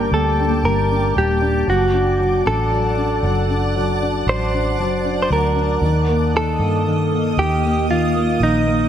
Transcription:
Already playing: felt piano G3 D4, ambient pad A#3 G5 A5 D6
0.11 fingered electric bass D2, felt piano G3, clean electric guitar A4
0.40 felt piano D4
0.63 fingered electric bass G1, felt piano G3, clean electric guitar A#4
0.91 felt piano D4
1.15 fingered electric bass D#1, felt piano G3, clean electric guitar G4
1.42 felt piano D4
1.67 fingered electric bass F#1, felt piano F#3, clean electric guitar F#4, ambient pad D5 F#5 A5
1.93 felt piano D4
2.19 felt piano F#3
2.45 fingered electric bass A1, felt piano D4, clean electric guitar A4
2.71 felt piano F#3
2.97 felt piano D4
3.22 fingered electric bass F#1, felt piano F#3
3.50 felt piano D4
3.75 felt piano F#3
4.02 felt piano D4
4.26 fingered electric bass A1, clean electric guitar C5
4.53 felt piano D4
4.78 fingered electric bass F#1, felt piano F#3
5.04 felt piano D4
5.22 clean electric guitar C5
5.30 fingered electric bass D2, felt piano F#3, clean electric guitar A#4
5.55 felt piano D4
5.81 fingered electric bass D#2, felt piano D#3, ambient pad A#3 D#5 D#6
6.08 felt piano A#3
6.34 felt piano D#3, clean electric guitar A4
6.59 fingered electric bass G2, felt piano A#3
6.87 felt piano D#3
7.11 felt piano A#3
7.37 fingered electric bass D#2, felt piano D#3, clean electric guitar G4
7.64 felt piano A#3
7.90 felt piano D#3, clean electric guitar F4
8.16 felt piano A#3
8.40 fingered electric bass A#1, felt piano D#3, clean electric guitar D#4
8.66 felt piano A#3

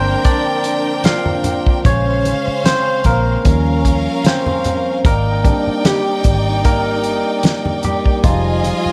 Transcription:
Already playing: fingered electric bass G1, tine electric piano D3 F3 A#3 C4 A#4 C5, violin section D4 A#4 G5
0.24 tine electric piano D4 D5, kick, closed hi-hat, muted conga
0.46 muted conga
0.64 closed hi-hat
1.04 tine electric piano F4 F5, snare, closed hi-hat, high conga
1.26 muted conga, high conga, low conga
1.44 closed hi-hat, low conga
1.67 kick
1.85 fingered electric bass A#1, tine electric piano C#3 G#3 C#4 C5 C#5, violin section C#4 C5 F5, kick, closed hi-hat, muted conga, low conga
2.06 muted conga
2.25 closed hi-hat, high conga
2.47 muted fingered electric bass stroke
2.64 tine electric piano C4 C5, snare, closed hi-hat, high conga
3.04 fingered electric bass A#1, tine electric piano A#3 A#4, kick, closed hi-hat, high conga
3.44 fingered electric bass D#2, tine electric piano F3 G3 C#4, violin section C#4 A#4 F5, kick, closed hi-hat
3.66 muted conga
3.85 kick, closed hi-hat
4.24 tine electric piano C4 C5, snare, closed hi-hat, muted conga, high conga
4.46 muted conga, high conga, low conga
4.64 closed hi-hat, low conga
5.05 fingered electric bass G#1, tine electric piano A#3 A#4, violin section D#4 D5 G5, kick, closed hi-hat, low conga
5.26 muted conga
5.44 tine electric piano G3 A#3 C4 D4, kick, closed hi-hat, high conga
5.67 muted fingered electric bass stroke
5.85 tine electric piano G3 G4, snare, closed hi-hat, muted conga, high conga
6.24 fingered electric bass G#1, kick, closed hi-hat, high conga
6.65 tine electric piano A#3 A#4, kick, closed hi-hat, muted conga
7.04 closed hi-hat
7.43 snare, closed hi-hat, muted conga, high conga
7.66 high conga, low conga
7.83 tine electric piano G3 G4, closed hi-hat, low conga
8.06 kick
8.23 fingered electric bass F1, tine electric piano F3 G3 G#3 D#4 F4, violin section F4 D#5 G#5, kick, closed hi-hat, muted conga, low conga
8.45 muted conga
8.63 closed hi-hat, high conga
8.86 muted fingered electric bass stroke

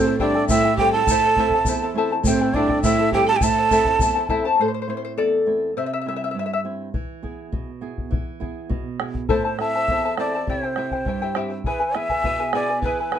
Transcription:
Already playing: nylon-string guitar A2, pan flute C4, quena C5
0.06 charango E4 A4 G5
0.19 nylon-string guitar G3 C4 E4, pan flute D4, charango E4 G4 A4 C5 G5, quena D5, bombo low
0.35 charango E4 A4 G5
0.48 nylon-string guitar A2, pan flute E4, charango E4 A4 C5 G5, quena E5, bombo low, shaker
0.65 charango E4 A4 G5
0.76 nylon-string guitar G3 C4 E4, pan flute G4, quena G5, bombo low
0.80 charango E4 G4 A4 C5 G5
0.92 pan flute A4, charango A4 G5, quena A5
0.96 charango E4
1.07 nylon-string guitar A2, charango E5, bombo low, shaker
1.11 charango E4 A4 C5 A5
1.25 charango E4 C5 A5
1.36 nylon-string guitar A3 C4 E4, charango E4 A4 E5, bombo low
1.40 charango C5 A5
1.50 charango A5, bombo low
1.55 charango E4 C5
1.65 nylon-string guitar E2, charango E4 C5 E5, bombo low, shaker
1.69 charango A5
1.83 charango E4 C5 A5
1.94 nylon-string guitar A3 C4 E4, charango E4 A4 E5 A5
1.98 charango C5
2.12 charango E4 C5 A5
2.23 nylon-string guitar A2, pan flute C4, charango E4 G4 C5 G5, quena C5, bombo low, shaker
2.28 charango A4
2.41 charango E4 A4 G5
2.53 nylon-string guitar G3 C4 E4, pan flute D4, charango E4 G4 A4 C5, quena D5, bombo low
2.57 charango G5
2.69 charango E4 A4 G5, bombo low
2.83 nylon-string guitar A2, pan flute E4, charango E4 A4 C5 G5, quena E5, bombo low, shaker
2.99 charango E4 A4 G5
3.12 nylon-string guitar G3 C4 E4, charango E4 G4 A4 C5 G5, pan flute G4, quena G5, bombo low
3.26 pan flute A4, charango A4 G5, quena A5
3.30 charango E4, pan flute G4
3.36 pan flute A4, quena G5
3.41 nylon-string guitar A2, charango E4 A4 C5 E5 A5, quena A5, bombo low, shaker
3.57 charango E4 C5 A5
3.71 nylon-string guitar A3 C4 E4, charango E4 A4 C5 E5 A5, bombo low, shaker
3.85 charango E4 C5 A5, bombo low
3.99 nylon-string guitar E2, charango E4 C5 E5 A5, bombo low, shaker
4.15 charango E4 C5 A5
4.29 nylon-string guitar A3 C4 E4, charango E4 A4 C5 E5 A5, bombo low
4.45 charango E4 C5 A5
4.59 nylon-string guitar A2, charango A4 C5
4.68 charango C5
4.74 charango C5
4.82 charango C5
4.88 nylon-string guitar A3 C4 E4, charango C5
4.97 charango C5
5.05 charango C5
5.18 nylon-string guitar E2, charango A4 D5
5.46 nylon-string guitar A3 C4 E4
5.77 nylon-string guitar C3, charango C5 E5
5.86 charango E5
5.93 charango E5
6.01 charango E5
6.06 nylon-string guitar G3 C4 E4, charango E5
6.16 charango E5
6.24 charango E5
6.31 nylon-string guitar G2, charango E5
6.39 charango E5
6.46 charango E5
6.53 charango E5
6.64 nylon-string guitar G3 C4 E4
6.94 nylon-string guitar E3, bombo low
7.23 nylon-string guitar B3 E4 G#4, bombo low
7.52 nylon-string guitar B2, bombo low
7.81 nylon-string guitar B3 E4 G#4
7.98 bombo low
8.11 nylon-string guitar E3, bombo low
8.40 nylon-string guitar B3 E4 G#4, bombo low
8.69 nylon-string guitar B2, bombo low
8.99 nylon-string guitar B3 E4 G#4, bombo rim
9.15 bombo low
9.29 nylon-string guitar A2, charango E4 A4 C5 E5 A5, quena C5, bombo low
9.45 charango E4 C5 A5
9.58 nylon-string guitar C4 E4 A4, charango E4 C5 E5 A5, quena E5, bombo rim
9.75 charango E4 C5 A5
9.88 nylon-string guitar E2, charango E4 C5 E5 A5, bombo low
10.05 charango E4 A4 C5 E5 A5
10.17 nylon-string guitar C4 E4 A4, charango E4 A4 C5 E5 A5, quena D5, bombo rim
10.35 charango E4 C5 A5
10.47 nylon-string guitar C3, charango E4 G4 C5 E5 G5, quena C5, bombo low
10.63 charango E4 C5 G5
10.76 nylon-string guitar C4 E4 G4, charango E4 C5 E5 G5, bombo rim
10.91 charango E4 C5 G5, bombo low
11.06 nylon-string guitar G2, charango E4 C5 E5 G5, bombo low
11.22 charango E4 G4 C5 E5 G5
11.35 nylon-string guitar C4 E4 G4, charango E4 G4 C5 E5 G5, bombo rim
11.50 charango E4 C5 G5
11.64 nylon-string guitar E3, charango E4 G#4 B4 E5 G#5, quena B4, bombo low
11.80 charango E4 B4 G#5
11.95 nylon-string guitar B3 E4 G#4, charango E4 B4 E5 G#5, quena E5, bombo rim
12.09 charango E4 B4 G#5, bombo low
12.24 nylon-string guitar B2, charango E4 B4 E5 G#5, bombo low
12.40 charango E4 G#4 B4 E5 G#5
12.53 nylon-string guitar B3 E4 G#4, charango E4 G#4 B4 E5 G#5, quena D5, bombo rim
12.69 charango E4 B4 G#5
12.82 nylon-string guitar E3, charango E4 G#4 B4 E5 G#5, pan flute B4, quena B4, bombo low
13.00 charango E4 B4 G#5
13.12 nylon-string guitar B3 E4 G#4, charango E4 B4 E5 G#5, bombo rim

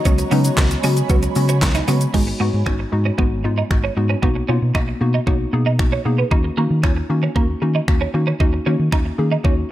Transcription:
Already playing: ambient pad F#4
0.05 fingered electric bass C#2, synth pluck F#3 G#3 B3 C#4 F#4, clean electric guitar C#4, ambient pad C#5 G#5 B5, kick, closed hi-hat, shaker
0.18 muted clean electric guitar stroke, closed hi-hat, shaker
0.31 fingered electric bass C#3, synth pluck F#3 G#3 B3 C#4 D#4, clean electric guitar B3, open hi-hat, shaker
0.45 closed hi-hat, shaker
0.57 fingered electric bass C#2, synth pluck F#3 G#3 B3 C#4 F#4, kick, snare, clap, closed hi-hat, shaker
0.71 closed hi-hat, shaker
0.84 fingered electric bass C#3, synth pluck F#3 G#3 B3 C#4 F#4, clean electric guitar C#4, open hi-hat, shaker
0.97 closed hi-hat, shaker
1.09 fingered electric bass C#2, synth pluck F#3 G#3 B3 C#4 F#4, clean electric guitar B3, kick, closed hi-hat, shaker
1.23 muted clean electric guitar stroke, closed hi-hat, shaker
1.36 fingered electric bass C#3, synth pluck F#3 G#3 B3 C#4 F#4, open hi-hat, shaker
1.49 clean electric guitar C#4, closed hi-hat, shaker
1.62 fingered electric bass C#2, synth pluck F#3 G#3 B3 C#4 F#4, muted clean electric guitar stroke, kick, snare, clap, closed hi-hat, shaker
1.75 clean electric guitar D#4, closed hi-hat, shaker
1.88 fingered electric bass C#3, synth pluck F#3 G#3 B3 C#4 F#4, clean electric guitar B3, open hi-hat, shaker
2.01 closed hi-hat, shaker
2.14 fingered electric bass G#1, clean electric guitar G#3, synth pluck G#3 B3 D#4 F#4, kick, crash
2.27 muted clean electric guitar stroke
2.40 fingered electric bass G#2, synth pluck G#3 B3 D#4 F#4, clean electric guitar B3
2.54 fingered electric bass G#2
2.66 fingered electric bass G#1, synth pluck G#3 B3 D#4 F#4, clean electric guitar C#4, finger snap, kick
2.79 muted clean electric guitar stroke
2.92 fingered electric bass G#2, synth pluck G#3 B3 D#4 F#4
3.05 clean electric guitar C#4
3.18 fingered electric bass G#1, synth pluck G#3 B3 D#4 F#4, clean electric guitar B3, kick
3.44 fingered electric bass G#2, synth pluck G#3 B3 D#4 F4, muted clean electric guitar stroke
3.58 clean electric guitar D#4
3.70 fingered electric bass G#1, synth pluck G#3 B3 D#4 F#4, finger snap, kick
3.84 clean electric guitar C#4
3.97 fingered electric bass G#2, synth pluck G#3 B3 D#4 F#4, muted clean electric guitar stroke
4.10 clean electric guitar C#4
4.22 fingered electric bass B1, synth pluck A#3 B3 D#4 F#4, clean electric guitar B3, kick
4.35 muted clean electric guitar stroke
4.49 fingered electric bass B2, synth pluck A#3 B3 D#4 F4, clean electric guitar C#4
4.62 fingered electric bass B2
4.75 fingered electric bass B1, synth pluck A#3 B3 D#4 F#4, clean electric guitar D#4, finger snap, kick
4.88 muted clean electric guitar stroke
5.01 fingered electric bass B2, synth pluck A#3 B3 D#4 F#4
5.14 clean electric guitar D#4
5.27 fingered electric bass B1, synth pluck A#3 B3 D#4 F#4, clean electric guitar C#4, kick
5.53 fingered electric bass B2, synth pluck A#3 B3 D#4 G#4, muted clean electric guitar stroke
5.66 clean electric guitar D#4
5.79 fingered electric bass B1, synth pluck A#3 B3 D#4 F#4, finger snap, kick
5.92 clean electric guitar C#4
6.05 fingered electric bass B2, synth pluck A#3 B3 D#4 G#4, muted clean electric guitar stroke
6.18 clean electric guitar B3
6.31 fingered electric bass D#2, synth pluck A#3 C#4 D#4 F#4, clean electric guitar D#4, kick
6.44 muted clean electric guitar stroke
6.57 fingered electric bass D#3, synth pluck A#3 C#4 D#4 F#4, clean electric guitar A#3
6.70 fingered electric bass D#3
6.83 fingered electric bass D#2, synth pluck A#3 C#4 D#4 F4, clean electric guitar C#4, finger snap, kick
6.97 muted clean electric guitar stroke
7.10 fingered electric bass D#3, synth pluck A#3 C#4 D#4 F#4
7.23 clean electric guitar C#4
7.36 fingered electric bass D#2, clean electric guitar A#3, synth pluck A#3 C#4 D#4 F#4, kick
7.62 fingered electric bass D#3, synth pluck A#3 C#4 D#4 F#4, muted clean electric guitar stroke
7.75 clean electric guitar D#4
7.88 fingered electric bass D#2, synth pluck A#3 C#4 D#4 F#4, finger snap, kick
8.01 clean electric guitar C#4
8.14 fingered electric bass D#3, synth pluck A#3 C#4 D#4 F#4, muted clean electric guitar stroke
8.27 clean electric guitar C#4
8.40 fingered electric bass D#2, synth pluck A#3 C#4 D#4 F#4, clean electric guitar D#4, kick
8.53 muted clean electric guitar stroke
8.66 fingered electric bass D#3, synth pluck A#3 C#4 D#4 F#4, clean electric guitar C#4
8.79 fingered electric bass D#3
8.92 fingered electric bass D#2, synth pluck A#3 C#4 D#4 F#4, clean electric guitar D#4, finger snap, kick
9.05 muted clean electric guitar stroke
9.18 fingered electric bass D#3, synth pluck A#3 C#4 D#4 G#4
9.32 clean electric guitar D#4
9.44 fingered electric bass D#2, synth pluck A#3 C#4 D#4 F#4, clean electric guitar C#4, kick

